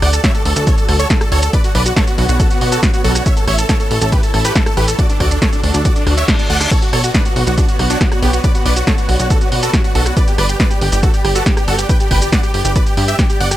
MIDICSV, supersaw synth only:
0, 0, Header, 1, 2, 480
1, 0, Start_track
1, 0, Key_signature, 2, "minor"
1, 0, Tempo, 431655
1, 1706, Time_signature, 4, 2, 24, 8
1, 15089, End_track
2, 0, Start_track
2, 0, Title_t, "Supersaw synth"
2, 0, Program_c, 0, 81
2, 25, Note_on_c, 0, 74, 83
2, 25, Note_on_c, 0, 78, 95
2, 112, Note_off_c, 0, 74, 0
2, 112, Note_off_c, 0, 78, 0
2, 145, Note_on_c, 0, 69, 67
2, 232, Note_off_c, 0, 69, 0
2, 265, Note_on_c, 0, 73, 78
2, 266, Note_on_c, 0, 76, 98
2, 352, Note_off_c, 0, 73, 0
2, 352, Note_off_c, 0, 76, 0
2, 385, Note_on_c, 0, 69, 66
2, 472, Note_off_c, 0, 69, 0
2, 505, Note_on_c, 0, 69, 64
2, 592, Note_off_c, 0, 69, 0
2, 625, Note_on_c, 0, 69, 67
2, 712, Note_off_c, 0, 69, 0
2, 745, Note_on_c, 0, 69, 73
2, 745, Note_on_c, 0, 73, 94
2, 832, Note_off_c, 0, 69, 0
2, 832, Note_off_c, 0, 73, 0
2, 865, Note_on_c, 0, 69, 66
2, 952, Note_off_c, 0, 69, 0
2, 985, Note_on_c, 0, 69, 65
2, 1072, Note_off_c, 0, 69, 0
2, 1105, Note_on_c, 0, 69, 76
2, 1105, Note_on_c, 0, 73, 98
2, 1192, Note_off_c, 0, 69, 0
2, 1192, Note_off_c, 0, 73, 0
2, 1226, Note_on_c, 0, 69, 65
2, 1312, Note_off_c, 0, 69, 0
2, 1346, Note_on_c, 0, 69, 61
2, 1432, Note_off_c, 0, 69, 0
2, 1466, Note_on_c, 0, 69, 84
2, 1466, Note_on_c, 0, 73, 93
2, 1552, Note_off_c, 0, 69, 0
2, 1552, Note_off_c, 0, 73, 0
2, 1586, Note_on_c, 0, 69, 64
2, 1672, Note_off_c, 0, 69, 0
2, 1706, Note_on_c, 0, 71, 80
2, 1706, Note_on_c, 0, 74, 97
2, 1792, Note_off_c, 0, 71, 0
2, 1792, Note_off_c, 0, 74, 0
2, 1826, Note_on_c, 0, 66, 61
2, 1912, Note_off_c, 0, 66, 0
2, 1945, Note_on_c, 0, 71, 82
2, 1945, Note_on_c, 0, 74, 97
2, 2032, Note_off_c, 0, 71, 0
2, 2032, Note_off_c, 0, 74, 0
2, 2065, Note_on_c, 0, 66, 66
2, 2152, Note_off_c, 0, 66, 0
2, 2185, Note_on_c, 0, 69, 77
2, 2185, Note_on_c, 0, 73, 95
2, 2271, Note_off_c, 0, 73, 0
2, 2272, Note_off_c, 0, 69, 0
2, 2305, Note_on_c, 0, 66, 64
2, 2392, Note_off_c, 0, 66, 0
2, 2425, Note_on_c, 0, 66, 65
2, 2512, Note_off_c, 0, 66, 0
2, 2546, Note_on_c, 0, 66, 64
2, 2632, Note_off_c, 0, 66, 0
2, 2665, Note_on_c, 0, 66, 77
2, 2665, Note_on_c, 0, 69, 98
2, 2752, Note_off_c, 0, 66, 0
2, 2752, Note_off_c, 0, 69, 0
2, 2785, Note_on_c, 0, 66, 66
2, 2872, Note_off_c, 0, 66, 0
2, 2906, Note_on_c, 0, 66, 68
2, 2992, Note_off_c, 0, 66, 0
2, 3026, Note_on_c, 0, 66, 80
2, 3026, Note_on_c, 0, 69, 93
2, 3112, Note_off_c, 0, 66, 0
2, 3112, Note_off_c, 0, 69, 0
2, 3145, Note_on_c, 0, 66, 64
2, 3232, Note_off_c, 0, 66, 0
2, 3265, Note_on_c, 0, 66, 61
2, 3352, Note_off_c, 0, 66, 0
2, 3385, Note_on_c, 0, 66, 80
2, 3385, Note_on_c, 0, 69, 98
2, 3472, Note_off_c, 0, 66, 0
2, 3472, Note_off_c, 0, 69, 0
2, 3506, Note_on_c, 0, 66, 68
2, 3592, Note_off_c, 0, 66, 0
2, 3625, Note_on_c, 0, 73, 81
2, 3625, Note_on_c, 0, 76, 99
2, 3712, Note_off_c, 0, 73, 0
2, 3712, Note_off_c, 0, 76, 0
2, 3745, Note_on_c, 0, 69, 62
2, 3832, Note_off_c, 0, 69, 0
2, 3865, Note_on_c, 0, 73, 84
2, 3865, Note_on_c, 0, 76, 96
2, 3952, Note_off_c, 0, 73, 0
2, 3952, Note_off_c, 0, 76, 0
2, 3985, Note_on_c, 0, 69, 65
2, 4072, Note_off_c, 0, 69, 0
2, 4104, Note_on_c, 0, 69, 78
2, 4104, Note_on_c, 0, 73, 93
2, 4191, Note_off_c, 0, 69, 0
2, 4191, Note_off_c, 0, 73, 0
2, 4225, Note_on_c, 0, 69, 66
2, 4312, Note_off_c, 0, 69, 0
2, 4345, Note_on_c, 0, 69, 69
2, 4432, Note_off_c, 0, 69, 0
2, 4465, Note_on_c, 0, 69, 62
2, 4552, Note_off_c, 0, 69, 0
2, 4585, Note_on_c, 0, 67, 78
2, 4585, Note_on_c, 0, 71, 93
2, 4672, Note_off_c, 0, 67, 0
2, 4672, Note_off_c, 0, 71, 0
2, 4704, Note_on_c, 0, 69, 67
2, 4791, Note_off_c, 0, 69, 0
2, 4825, Note_on_c, 0, 69, 65
2, 4912, Note_off_c, 0, 69, 0
2, 4945, Note_on_c, 0, 67, 74
2, 4945, Note_on_c, 0, 71, 92
2, 5032, Note_off_c, 0, 67, 0
2, 5032, Note_off_c, 0, 71, 0
2, 5065, Note_on_c, 0, 69, 62
2, 5152, Note_off_c, 0, 69, 0
2, 5184, Note_on_c, 0, 69, 62
2, 5271, Note_off_c, 0, 69, 0
2, 5305, Note_on_c, 0, 67, 82
2, 5305, Note_on_c, 0, 71, 99
2, 5392, Note_off_c, 0, 67, 0
2, 5392, Note_off_c, 0, 71, 0
2, 5425, Note_on_c, 0, 69, 63
2, 5512, Note_off_c, 0, 69, 0
2, 5545, Note_on_c, 0, 74, 101
2, 5546, Note_on_c, 0, 66, 78
2, 5632, Note_off_c, 0, 66, 0
2, 5632, Note_off_c, 0, 74, 0
2, 5665, Note_on_c, 0, 62, 63
2, 5752, Note_off_c, 0, 62, 0
2, 5786, Note_on_c, 0, 66, 80
2, 5786, Note_on_c, 0, 74, 94
2, 5872, Note_off_c, 0, 66, 0
2, 5872, Note_off_c, 0, 74, 0
2, 5906, Note_on_c, 0, 62, 65
2, 5992, Note_off_c, 0, 62, 0
2, 6025, Note_on_c, 0, 73, 95
2, 6026, Note_on_c, 0, 69, 78
2, 6112, Note_off_c, 0, 69, 0
2, 6112, Note_off_c, 0, 73, 0
2, 6146, Note_on_c, 0, 62, 69
2, 6232, Note_off_c, 0, 62, 0
2, 6266, Note_on_c, 0, 62, 62
2, 6352, Note_off_c, 0, 62, 0
2, 6386, Note_on_c, 0, 62, 64
2, 6472, Note_off_c, 0, 62, 0
2, 6506, Note_on_c, 0, 66, 76
2, 6506, Note_on_c, 0, 74, 99
2, 6592, Note_off_c, 0, 66, 0
2, 6592, Note_off_c, 0, 74, 0
2, 6626, Note_on_c, 0, 62, 65
2, 6712, Note_off_c, 0, 62, 0
2, 6745, Note_on_c, 0, 62, 67
2, 6832, Note_off_c, 0, 62, 0
2, 6866, Note_on_c, 0, 73, 74
2, 6866, Note_on_c, 0, 76, 93
2, 6952, Note_off_c, 0, 73, 0
2, 6952, Note_off_c, 0, 76, 0
2, 6986, Note_on_c, 0, 62, 64
2, 7072, Note_off_c, 0, 62, 0
2, 7106, Note_on_c, 0, 62, 62
2, 7192, Note_off_c, 0, 62, 0
2, 7226, Note_on_c, 0, 74, 78
2, 7226, Note_on_c, 0, 78, 94
2, 7312, Note_off_c, 0, 74, 0
2, 7312, Note_off_c, 0, 78, 0
2, 7345, Note_on_c, 0, 62, 64
2, 7432, Note_off_c, 0, 62, 0
2, 7466, Note_on_c, 0, 69, 79
2, 7466, Note_on_c, 0, 73, 100
2, 7552, Note_off_c, 0, 69, 0
2, 7552, Note_off_c, 0, 73, 0
2, 7586, Note_on_c, 0, 66, 60
2, 7672, Note_off_c, 0, 66, 0
2, 7706, Note_on_c, 0, 69, 81
2, 7707, Note_on_c, 0, 73, 95
2, 7792, Note_off_c, 0, 69, 0
2, 7793, Note_off_c, 0, 73, 0
2, 7826, Note_on_c, 0, 66, 66
2, 7912, Note_off_c, 0, 66, 0
2, 7946, Note_on_c, 0, 71, 90
2, 7947, Note_on_c, 0, 62, 79
2, 8032, Note_off_c, 0, 71, 0
2, 8033, Note_off_c, 0, 62, 0
2, 8066, Note_on_c, 0, 66, 65
2, 8152, Note_off_c, 0, 66, 0
2, 8186, Note_on_c, 0, 66, 64
2, 8272, Note_off_c, 0, 66, 0
2, 8306, Note_on_c, 0, 66, 65
2, 8392, Note_off_c, 0, 66, 0
2, 8426, Note_on_c, 0, 62, 77
2, 8426, Note_on_c, 0, 66, 93
2, 8512, Note_off_c, 0, 62, 0
2, 8512, Note_off_c, 0, 66, 0
2, 8546, Note_on_c, 0, 66, 67
2, 8632, Note_off_c, 0, 66, 0
2, 8666, Note_on_c, 0, 66, 67
2, 8752, Note_off_c, 0, 66, 0
2, 8786, Note_on_c, 0, 62, 78
2, 8786, Note_on_c, 0, 66, 93
2, 8872, Note_off_c, 0, 62, 0
2, 8872, Note_off_c, 0, 66, 0
2, 9025, Note_on_c, 0, 66, 65
2, 9112, Note_off_c, 0, 66, 0
2, 9145, Note_on_c, 0, 59, 86
2, 9145, Note_on_c, 0, 67, 94
2, 9232, Note_off_c, 0, 59, 0
2, 9232, Note_off_c, 0, 67, 0
2, 9265, Note_on_c, 0, 66, 67
2, 9352, Note_off_c, 0, 66, 0
2, 9385, Note_on_c, 0, 71, 79
2, 9385, Note_on_c, 0, 74, 103
2, 9472, Note_off_c, 0, 71, 0
2, 9472, Note_off_c, 0, 74, 0
2, 9505, Note_on_c, 0, 66, 63
2, 9592, Note_off_c, 0, 66, 0
2, 9626, Note_on_c, 0, 71, 85
2, 9626, Note_on_c, 0, 74, 94
2, 9712, Note_off_c, 0, 71, 0
2, 9712, Note_off_c, 0, 74, 0
2, 9745, Note_on_c, 0, 66, 64
2, 9832, Note_off_c, 0, 66, 0
2, 9865, Note_on_c, 0, 69, 74
2, 9865, Note_on_c, 0, 73, 92
2, 9952, Note_off_c, 0, 69, 0
2, 9952, Note_off_c, 0, 73, 0
2, 9985, Note_on_c, 0, 66, 67
2, 10072, Note_off_c, 0, 66, 0
2, 10105, Note_on_c, 0, 66, 65
2, 10192, Note_off_c, 0, 66, 0
2, 10225, Note_on_c, 0, 66, 62
2, 10311, Note_off_c, 0, 66, 0
2, 10345, Note_on_c, 0, 66, 80
2, 10345, Note_on_c, 0, 69, 97
2, 10432, Note_off_c, 0, 66, 0
2, 10432, Note_off_c, 0, 69, 0
2, 10465, Note_on_c, 0, 66, 66
2, 10552, Note_off_c, 0, 66, 0
2, 10586, Note_on_c, 0, 66, 67
2, 10672, Note_off_c, 0, 66, 0
2, 10705, Note_on_c, 0, 66, 74
2, 10705, Note_on_c, 0, 69, 96
2, 10792, Note_off_c, 0, 66, 0
2, 10792, Note_off_c, 0, 69, 0
2, 10825, Note_on_c, 0, 66, 65
2, 10912, Note_off_c, 0, 66, 0
2, 10945, Note_on_c, 0, 66, 65
2, 11032, Note_off_c, 0, 66, 0
2, 11065, Note_on_c, 0, 66, 82
2, 11065, Note_on_c, 0, 69, 97
2, 11152, Note_off_c, 0, 66, 0
2, 11152, Note_off_c, 0, 69, 0
2, 11185, Note_on_c, 0, 66, 65
2, 11272, Note_off_c, 0, 66, 0
2, 11304, Note_on_c, 0, 71, 83
2, 11304, Note_on_c, 0, 74, 103
2, 11391, Note_off_c, 0, 71, 0
2, 11391, Note_off_c, 0, 74, 0
2, 11425, Note_on_c, 0, 67, 63
2, 11512, Note_off_c, 0, 67, 0
2, 11545, Note_on_c, 0, 74, 94
2, 11546, Note_on_c, 0, 71, 86
2, 11632, Note_off_c, 0, 71, 0
2, 11632, Note_off_c, 0, 74, 0
2, 11666, Note_on_c, 0, 67, 67
2, 11752, Note_off_c, 0, 67, 0
2, 11786, Note_on_c, 0, 71, 75
2, 11786, Note_on_c, 0, 74, 91
2, 11872, Note_off_c, 0, 71, 0
2, 11872, Note_off_c, 0, 74, 0
2, 11906, Note_on_c, 0, 67, 66
2, 11992, Note_off_c, 0, 67, 0
2, 12026, Note_on_c, 0, 67, 67
2, 12112, Note_off_c, 0, 67, 0
2, 12146, Note_on_c, 0, 67, 63
2, 12232, Note_off_c, 0, 67, 0
2, 12266, Note_on_c, 0, 66, 79
2, 12266, Note_on_c, 0, 69, 96
2, 12352, Note_off_c, 0, 66, 0
2, 12352, Note_off_c, 0, 69, 0
2, 12386, Note_on_c, 0, 67, 65
2, 12472, Note_off_c, 0, 67, 0
2, 12505, Note_on_c, 0, 67, 68
2, 12592, Note_off_c, 0, 67, 0
2, 12626, Note_on_c, 0, 66, 76
2, 12626, Note_on_c, 0, 69, 92
2, 12712, Note_off_c, 0, 66, 0
2, 12712, Note_off_c, 0, 69, 0
2, 12746, Note_on_c, 0, 67, 62
2, 12832, Note_off_c, 0, 67, 0
2, 12866, Note_on_c, 0, 67, 65
2, 12952, Note_off_c, 0, 67, 0
2, 12986, Note_on_c, 0, 66, 83
2, 12986, Note_on_c, 0, 69, 101
2, 13072, Note_off_c, 0, 66, 0
2, 13072, Note_off_c, 0, 69, 0
2, 13106, Note_on_c, 0, 67, 64
2, 13192, Note_off_c, 0, 67, 0
2, 13226, Note_on_c, 0, 71, 77
2, 13226, Note_on_c, 0, 79, 96
2, 13312, Note_off_c, 0, 71, 0
2, 13312, Note_off_c, 0, 79, 0
2, 13346, Note_on_c, 0, 67, 65
2, 13432, Note_off_c, 0, 67, 0
2, 13466, Note_on_c, 0, 71, 83
2, 13466, Note_on_c, 0, 79, 95
2, 13552, Note_off_c, 0, 71, 0
2, 13552, Note_off_c, 0, 79, 0
2, 13586, Note_on_c, 0, 67, 66
2, 13672, Note_off_c, 0, 67, 0
2, 13704, Note_on_c, 0, 74, 72
2, 13705, Note_on_c, 0, 78, 95
2, 13791, Note_off_c, 0, 74, 0
2, 13792, Note_off_c, 0, 78, 0
2, 13825, Note_on_c, 0, 67, 65
2, 13912, Note_off_c, 0, 67, 0
2, 13945, Note_on_c, 0, 67, 69
2, 14032, Note_off_c, 0, 67, 0
2, 14065, Note_on_c, 0, 67, 66
2, 14152, Note_off_c, 0, 67, 0
2, 14184, Note_on_c, 0, 74, 98
2, 14185, Note_on_c, 0, 71, 79
2, 14271, Note_off_c, 0, 74, 0
2, 14272, Note_off_c, 0, 71, 0
2, 14305, Note_on_c, 0, 67, 66
2, 14392, Note_off_c, 0, 67, 0
2, 14425, Note_on_c, 0, 67, 67
2, 14512, Note_off_c, 0, 67, 0
2, 14545, Note_on_c, 0, 67, 76
2, 14545, Note_on_c, 0, 76, 94
2, 14632, Note_off_c, 0, 67, 0
2, 14632, Note_off_c, 0, 76, 0
2, 14666, Note_on_c, 0, 67, 60
2, 14752, Note_off_c, 0, 67, 0
2, 14786, Note_on_c, 0, 67, 64
2, 14872, Note_off_c, 0, 67, 0
2, 14906, Note_on_c, 0, 74, 82
2, 14906, Note_on_c, 0, 78, 92
2, 14992, Note_off_c, 0, 74, 0
2, 14992, Note_off_c, 0, 78, 0
2, 15025, Note_on_c, 0, 67, 63
2, 15089, Note_off_c, 0, 67, 0
2, 15089, End_track
0, 0, End_of_file